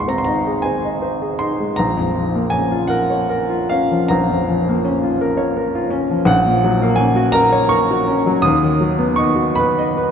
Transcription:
0.00 1.72 G#1 medium
0.00 1.77 D#2 soft
0.00 0.18 G#3 soft
0.00 0.18 C6 medium
0.00 1.77 C#6 medium
0.08 0.37 C4 medium
0.08 0.16 A#5 medium
0.18 0.26 C6 medium
0.24 0.56 D#4 medium
0.24 0.62 A#5 medium
0.47 0.75 G#4 medium
0.62 0.94 C5 medium
0.62 1.37 G#5 medium
0.85 1.13 D#5 medium
1.02 1.31 C5 medium
1.22 1.50 G#4 medium
1.39 1.69 D#4 medium
1.39 1.76 C6 loud
1.60 1.77 G#3 soft
1.76 4.09 A#1 medium
1.76 2.49 A#5 loud
1.97 2.25 F2 medium
2.15 2.43 F3 medium
2.35 2.62 A#3 medium
2.50 2.81 C#4 medium
2.50 2.88 G#5 medium
2.72 3.01 F4 medium
2.87 3.21 A#4 medium
2.87 3.71 F#5 medium
3.10 3.42 C#5 medium
3.30 3.63 A#4 medium
3.50 3.84 F4 medium
3.69 4.04 C#4 medium
3.69 4.11 F5 medium
3.92 4.23 F3 medium
4.08 6.24 A#1 medium
4.08 5.91 A#5 medium
4.29 4.60 F2 medium
4.48 4.78 F3 medium
4.69 4.97 A#3 medium
4.85 5.14 C#4 medium
5.03 5.32 F4 medium
5.21 5.50 A#4 medium
5.37 5.67 C#5 medium
5.57 5.85 A#4 medium
5.75 6.04 F4 medium
5.90 6.21 C#4 medium
6.11 6.29 F3 medium
6.25 8.38 A#1 medium
6.25 6.99 F#5 loud
6.46 6.75 A#2 medium
6.64 6.93 F#3 medium
6.82 7.11 A#3 medium
6.96 7.27 C#4 medium
6.96 7.33 G#5 loud
7.16 7.45 F#4 medium
7.32 7.63 A#4 medium
7.32 7.70 A#5 loud
7.52 7.82 C#5 medium
7.69 8.00 A#4 medium
7.69 8.42 C#6 loud
7.91 8.19 F#4 medium
8.08 8.37 C#4 medium
8.26 8.44 F#3 medium
8.42 10.11 D#2 medium
8.42 9.17 D#6 loud
8.62 8.92 D#3 medium
8.81 9.11 F#3 medium
8.99 9.29 B3 medium
9.16 9.49 D#4 medium
9.16 9.56 C#6 loud
9.36 9.69 F#4 medium
9.55 9.90 B4 medium
9.55 10.11 B5 loud
9.79 10.11 D#5 medium
9.97 10.11 B4 medium

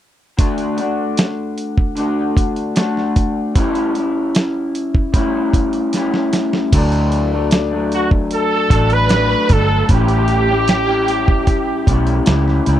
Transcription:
0.37 0.78 D3 medium
0.37 0.78 A3 medium
0.37 0.78 D4 medium
0.37 0.76 F#4 medium
0.37 kick medium
0.37 closed hi-hat medium
0.58 closed hi-hat soft
0.77 1.97 A3 soft
0.77 1.97 D4 soft
0.77 1.97 F#4 soft
0.77 closed hi-hat medium
1.17 snare loud
1.17 closed hi-hat medium
1.58 closed hi-hat medium
1.78 kick medium
1.96 2.74 D3 medium
1.96 2.76 A3 soft
1.96 2.77 D4 medium
1.96 2.78 F#4 medium
1.96 closed hi-hat medium
2.37 kick medium
2.37 closed hi-hat medium
2.56 closed hi-hat soft
2.75 3.55 D3 soft
2.75 3.55 A3 soft
2.75 3.56 D4 soft
2.75 3.57 F#4 medium
2.75 snare loud
2.75 closed hi-hat medium
2.97 snare soft
3.16 kick medium
3.16 closed hi-hat medium
3.54 3.95 A2 medium
3.54 3.95 G3 medium
3.54 3.95 C#4 medium
3.54 3.93 E4 medium
3.54 kick medium
3.54 closed hi-hat medium
3.75 closed hi-hat soft
3.94 5.13 G3 soft
3.94 5.14 C#4 soft
3.94 5.13 E4 soft
3.94 closed hi-hat soft
4.35 snare medium
4.35 closed hi-hat medium
4.75 closed hi-hat medium
4.95 kick medium
5.13 5.91 A2 medium
5.13 5.93 G3 medium
5.13 5.94 C#4 medium
5.13 5.95 E4 medium
5.13 kick medium
5.13 closed hi-hat medium
5.53 kick medium
5.53 closed hi-hat medium
5.73 closed hi-hat soft
5.92 6.72 A2 soft
5.92 6.73 G3 medium
5.92 6.73 C#4 medium
5.92 snare soft
5.92 closed hi-hat medium
5.96 6.74 E4 medium
6.14 snare soft
6.33 snare medium
6.33 closed hi-hat medium
6.53 snare medium
6.72 8.67 D2 medium
6.72 7.32 D3 medium
6.72 7.32 F#3 medium
6.72 7.32 A3 medium
6.72 7.30 D4 medium
6.72 kick medium
6.72 closed hi-hat medium
6.72 crash medium
6.92 closed hi-hat soft
7.12 closed hi-hat medium
7.31 7.71 A3 medium
7.31 7.69 D4 medium
7.35 7.73 F#3 soft
7.51 snare loud
7.51 closed hi-hat medium
7.70 8.72 A3 soft
7.70 8.70 D4 soft
7.75 8.70 F#3 soft
7.92 8.10 F#4 medium
7.92 closed hi-hat medium
8.11 kick medium
8.31 8.95 A4 medium
8.31 closed hi-hat medium
8.70 9.34 A1 medium
8.70 9.08 D3 medium
8.70 9.10 F#3 medium
8.70 9.11 A3 soft
8.70 9.12 D4 medium
8.70 kick medium
8.70 closed hi-hat medium
8.90 9.54 B4 loud
8.90 closed hi-hat soft
9.09 9.48 D3 soft
9.09 9.49 F#3 soft
9.09 9.51 A3 soft
9.09 snare loud
9.09 closed hi-hat medium
9.14 9.51 D4 soft
9.31 snare soft
9.49 9.82 G1 medium
9.49 9.89 D3 medium
9.49 9.89 F#3 medium
9.49 9.90 A3 medium
9.49 9.91 D4 medium
9.49 9.91 A4 medium
9.49 kick medium
9.49 closed hi-hat medium
9.89 11.84 A1 medium
9.89 10.48 A2 medium
9.89 10.49 G3 medium
9.89 10.49 C#4 medium
9.89 10.47 E4 medium
9.89 12.64 G4 medium
9.89 kick medium
9.89 closed hi-hat medium
10.08 closed hi-hat soft
10.28 closed hi-hat medium
10.48 10.90 G3 soft
10.48 10.88 C#4 soft
10.48 10.86 E4 soft
10.68 snare loud
10.68 closed hi-hat medium
10.87 11.88 G3 soft
10.87 11.88 C#4 medium
10.87 11.90 E4 medium
11.08 closed hi-hat medium
11.28 kick medium
11.47 kick medium
11.47 closed hi-hat medium
11.86 12.19 B1 medium
11.86 12.25 A2 medium
11.86 12.26 G3 medium
11.86 12.28 C#4 medium
11.86 12.28 E4 medium
11.86 kick medium
11.86 closed hi-hat medium
12.07 closed hi-hat soft
12.26 12.59 C#2 medium
12.26 12.64 A2 soft
12.26 12.65 G3 medium
12.26 12.66 C#4 medium
12.26 snare loud
12.26 closed hi-hat medium
12.30 12.68 E4 medium
12.48 snare soft
12.65 12.80 C#2 medium
12.65 12.80 A2 medium
12.65 12.80 G3 medium
12.65 12.80 C#4 medium
12.65 12.80 E4 medium
12.65 closed hi-hat medium

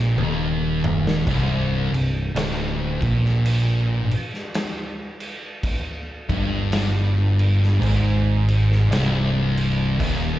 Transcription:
0.00 0.14 A#1 medium
0.00 0.16 A#2 loud
0.16 1.23 D#1 medium
0.16 1.26 D#2 loud
0.16 high tom medium
0.84 mid tom loud
1.07 snare loud
1.26 1.89 C1 loud
1.26 1.91 C2 loud
1.26 kick loud
1.26 crash medium
1.92 2.33 C1 medium
1.92 2.28 C2 medium
1.92 crash medium
2.35 2.98 D1 medium
2.35 3.00 D2 loud
2.35 snare loud
2.35 crash medium
3.01 4.08 A#1 loud
3.01 4.09 A#2 loud
3.01 kick loud
3.01 crash medium
3.25 snare soft
3.45 crash medium
4.11 crash medium
4.34 snare soft
4.54 snare loud
4.54 crash medium
5.20 crash medium
5.63 kick loud
5.63 crash medium
6.29 7.78 G1 medium
6.29 7.81 G2 loud
6.29 kick loud
6.29 crash medium
6.72 snare loud
6.72 crash medium
7.39 crash medium
7.63 snare soft
7.82 8.88 G#1 loud
7.82 8.90 G#2 loud
7.82 kick loud
7.82 crash medium
8.48 crash medium
8.72 snare soft
8.90 9.96 C1 medium
8.90 10.00 C2 loud
8.90 snare loud
8.90 crash medium
9.57 crash medium
10.00 10.39 D#1 loud
10.00 10.39 D#2 loud
10.00 kick loud
10.00 crash medium

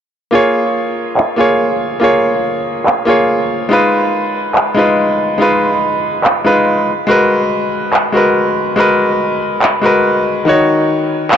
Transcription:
0.31 1.35 A#3 medium
0.31 1.36 F4 medium
0.31 1.36 G#4 medium
0.31 1.37 C#5 medium
1.17 clap medium
1.36 1.98 A#3 medium
1.36 1.99 F4 medium
1.36 2.00 G#4 medium
1.36 2.00 C#5 medium
2.00 3.04 A#3 medium
2.00 3.05 F4 medium
2.00 3.05 G#4 medium
2.04 3.06 C#5 medium
2.86 clap medium
3.05 3.67 A#3 medium
3.05 3.68 F4 medium
3.05 3.69 G#4 medium
3.09 3.69 C#5 medium
3.69 4.73 G#3 medium
3.69 4.74 D#4 medium
3.69 4.74 F4 medium
3.69 4.75 B4 medium
4.55 clap medium
4.74 5.36 G#3 medium
4.74 5.37 D#4 medium
4.74 5.38 F4 medium
4.79 5.38 B4 medium
5.38 6.42 G#3 medium
5.38 6.43 D#4 medium
5.38 6.43 F4 medium
5.38 6.44 B4 medium
6.24 clap medium
6.44 6.86 G#3 medium
6.44 6.86 D#4 medium
6.44 6.87 F4 medium
6.44 6.87 B4 medium
7.07 8.11 G#3 medium
7.07 8.12 F#4 medium
7.07 8.12 A#4 medium
7.11 8.13 B4 medium
7.93 clap medium
8.12 8.74 G#3 medium
8.12 8.75 F#4 medium
8.12 8.76 A#4 medium
8.17 8.76 B4 medium
8.76 9.80 G#3 medium
8.76 9.81 F#4 medium
8.76 9.81 A#4 medium
8.80 9.82 B4 medium
9.62 clap medium
9.82 10.43 G#3 medium
9.82 10.44 F#4 medium
9.82 10.45 A#4 medium
9.82 10.45 B4 medium
10.45 11.37 D#3 medium
10.45 11.37 D#4 medium
10.45 11.37 F#4 medium
10.49 11.37 C#5 medium
11.31 clap medium

